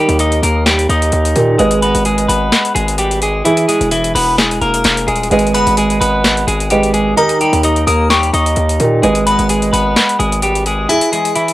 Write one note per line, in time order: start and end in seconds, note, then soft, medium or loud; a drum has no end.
0.00 1.32 D#3 medium
0.00 0.17 G3 medium
0.00 1.32 D#4 medium
0.00 0.17 G4 medium
0.00 1.33 G4 medium
0.00 1.33 A#4 medium
0.09 0.41 D#2 loud
0.09 closed hi-hat medium
0.19 0.40 D#4 loud
0.19 0.40 D#5 medium
0.19 closed hi-hat medium
0.32 closed hi-hat medium
0.43 0.87 D#2 loud
0.43 0.64 A#3 medium
0.43 0.63 A#4 medium
0.43 closed hi-hat medium
0.66 0.86 G3 medium
0.66 0.86 G4 medium
0.66 finger snap medium
0.66 snare loud
0.66 closed hi-hat medium
0.79 closed hi-hat medium
0.89 1.12 D#2 loud
0.89 1.55 D#4 medium
0.89 1.56 D#5 medium
0.89 closed hi-hat medium
1.02 closed hi-hat medium
1.12 1.35 D#2 loud
1.12 closed hi-hat medium
1.25 closed hi-hat medium
1.35 1.58 A#2 loud
1.35 1.59 D#3 soft
1.35 1.59 D#4 soft
1.35 1.59 G4 medium
1.35 1.59 A#4 medium
1.35 closed hi-hat medium
1.58 1.93 G#1 loud
1.58 3.41 G#3 medium
1.58 1.80 G#3 medium
1.58 3.41 G#4 medium
1.58 1.79 G#4 medium
1.58 3.42 B4 medium
1.58 3.42 D#5 medium
1.58 closed hi-hat medium
1.71 closed hi-hat medium
1.82 2.03 B3 medium
1.82 2.02 B4 medium
1.82 closed hi-hat medium
1.95 2.27 G#1 loud
1.95 closed hi-hat medium
2.05 2.26 G#3 medium
2.05 2.26 G#4 medium
2.05 closed hi-hat medium
2.18 closed hi-hat medium
2.28 2.51 G#1 loud
2.28 2.73 B3 medium
2.28 2.72 B4 medium
2.28 closed hi-hat medium
2.52 finger snap medium
2.52 snare loud
2.52 closed hi-hat medium
2.65 closed hi-hat medium
2.75 3.42 G#1 loud
2.75 2.96 G#3 medium
2.75 2.95 G#4 medium
2.75 closed hi-hat medium
2.88 closed hi-hat medium
2.98 3.19 G3 medium
2.98 3.19 G4 medium
2.98 closed hi-hat medium
3.11 closed hi-hat medium
3.22 3.43 G#3 medium
3.22 3.42 G#4 medium
3.22 closed hi-hat medium
3.44 5.27 E3 medium
3.44 3.66 E3 medium
3.44 3.65 E4 loud
3.44 5.27 E4 medium
3.44 5.28 G#4 medium
3.44 closed hi-hat medium
3.57 closed hi-hat medium
3.68 3.89 G#3 medium
3.68 3.88 G#4 medium
3.68 closed hi-hat medium
3.81 4.14 E1 loud
3.81 closed hi-hat medium
3.91 4.12 E3 medium
3.91 4.12 E4 medium
3.91 closed hi-hat medium
4.04 closed hi-hat medium
4.15 4.60 E1 loud
4.15 4.35 B3 medium
4.15 4.35 B4 medium
4.15 open hi-hat medium
4.38 4.59 G#3 medium
4.38 4.58 G#4 medium
4.38 finger snap medium
4.38 snare loud
4.38 closed hi-hat medium
4.51 closed hi-hat medium
4.61 4.84 E1 loud
4.61 5.06 A#3 medium
4.61 5.05 A#4 medium
4.61 closed hi-hat soft
4.74 closed hi-hat medium
4.84 5.07 E1 loud
4.84 finger snap medium
4.84 snare loud
4.84 closed hi-hat medium
4.97 closed hi-hat medium
5.08 5.30 D#1 loud
5.08 5.28 G#3 medium
5.08 5.28 G#4 medium
5.08 closed hi-hat medium
5.16 closed hi-hat soft
5.23 closed hi-hat medium
5.30 5.56 G#1 loud
5.30 6.68 G#3 medium
5.30 5.52 G#3 medium
5.30 6.68 G#4 medium
5.30 5.52 G#4 medium
5.30 6.68 B4 medium
5.30 6.69 D#5 medium
5.30 closed hi-hat soft
5.39 closed hi-hat soft
5.47 closed hi-hat soft
5.54 5.66 G1 loud
5.54 5.75 B3 medium
5.54 5.75 B4 medium
5.54 5.76 B5 medium
5.54 closed hi-hat medium
5.67 6.00 G#1 loud
5.67 closed hi-hat medium
5.77 5.98 G#3 medium
5.77 5.98 G#4 medium
5.77 closed hi-hat medium
5.90 closed hi-hat medium
6.01 6.46 G#1 loud
6.01 6.45 B3 medium
6.01 6.45 B4 medium
6.01 closed hi-hat medium
6.24 finger snap medium
6.24 snare loud
6.24 closed hi-hat medium
6.37 closed hi-hat medium
6.47 7.14 G#1 loud
6.47 6.68 G#3 medium
6.47 6.68 G#4 medium
6.47 closed hi-hat medium
6.60 closed hi-hat medium
6.70 6.91 G3 medium
6.70 7.17 G#3 soft
6.70 6.91 G4 medium
6.70 7.17 G#4 soft
6.70 7.18 B4 medium
6.70 7.18 D#5 medium
6.70 closed hi-hat medium
6.83 closed hi-hat medium
6.94 7.14 G#3 medium
6.94 7.14 G#4 medium
6.94 closed hi-hat medium
7.16 8.76 D#3 medium
7.16 8.77 D#4 medium
7.16 7.37 D#4 loud
7.16 8.77 G4 medium
7.16 8.77 A#4 medium
7.16 7.38 D#5 medium
7.16 7.83 A#5 loud
7.16 closed hi-hat medium
7.29 closed hi-hat medium
7.41 7.61 G3 medium
7.41 7.61 G4 medium
7.41 closed hi-hat medium
7.53 7.86 D#2 loud
7.53 closed hi-hat medium
7.63 7.84 D#4 loud
7.63 7.84 D#5 medium
7.63 closed hi-hat medium
7.76 closed hi-hat medium
7.87 8.32 D#2 loud
7.87 8.08 A#3 medium
7.87 8.07 A#4 medium
7.87 8.09 D#6 medium
7.87 closed hi-hat medium
8.10 8.31 G3 medium
8.10 8.30 G4 medium
8.10 8.54 C#6 medium
8.10 finger snap medium
8.10 snare loud
8.10 closed hi-hat medium
8.23 closed hi-hat medium
8.34 8.56 D#2 loud
8.34 8.99 D#4 medium
8.34 9.00 D#5 medium
8.34 closed hi-hat medium
8.46 closed hi-hat medium
8.56 8.79 D#2 loud
8.56 closed hi-hat medium
8.69 closed hi-hat medium
8.80 9.02 A#2 loud
8.80 9.03 D#3 soft
8.80 9.03 D#4 soft
8.80 9.03 G4 medium
8.80 9.04 A#4 medium
8.80 closed hi-hat medium
9.02 9.37 G#1 loud
9.02 10.85 G#3 medium
9.02 9.24 G#3 medium
9.02 10.85 G#4 medium
9.02 9.23 G#4 medium
9.02 10.86 B4 medium
9.02 10.86 D#5 medium
9.02 closed hi-hat medium
9.15 closed hi-hat medium
9.27 9.47 B3 medium
9.27 9.47 B4 medium
9.27 9.49 B5 medium
9.27 closed hi-hat medium
9.39 9.72 G#1 loud
9.39 closed hi-hat medium
9.49 9.70 G#3 medium
9.49 9.70 G#4 medium
9.49 closed hi-hat medium
9.62 closed hi-hat medium
9.73 9.95 G#1 loud
9.73 10.17 B3 medium
9.73 10.17 B4 medium
9.73 closed hi-hat medium
9.96 finger snap medium
9.96 snare loud
9.96 closed hi-hat medium
10.09 closed hi-hat medium
10.19 10.87 G#1 loud
10.19 10.40 G#3 medium
10.19 10.39 G#4 medium
10.19 closed hi-hat medium
10.32 closed hi-hat medium
10.42 10.63 G3 medium
10.42 10.63 G4 medium
10.42 closed hi-hat medium
10.55 closed hi-hat medium
10.66 10.87 G#3 medium
10.66 10.87 G#4 medium
10.66 closed hi-hat medium
10.89 11.53 E3 medium
10.89 11.10 E3 medium
10.89 11.09 E4 loud
10.89 11.53 E4 medium
10.89 11.53 G#4 medium
10.89 11.53 G#5 loud
10.89 closed hi-hat medium
11.01 closed hi-hat medium
11.12 11.33 G#3 medium
11.12 11.33 G#4 medium
11.12 closed hi-hat medium
11.25 closed hi-hat medium
11.35 11.53 E3 medium
11.35 11.53 E4 medium
11.35 closed hi-hat medium
11.48 closed hi-hat medium